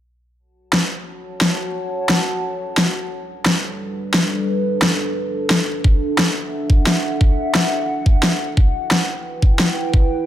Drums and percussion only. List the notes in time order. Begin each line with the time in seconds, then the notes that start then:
0.73 snare
1.41 snare
2.09 snare
2.78 snare
3.46 snare
4.14 snare
4.82 snare
5.50 snare
5.84 kick
6.19 snare
6.70 kick
6.87 snare
7.21 kick
7.55 snare
8.06 kick
8.23 snare
8.57 kick
8.91 snare
9.42 kick
9.59 snare
9.94 kick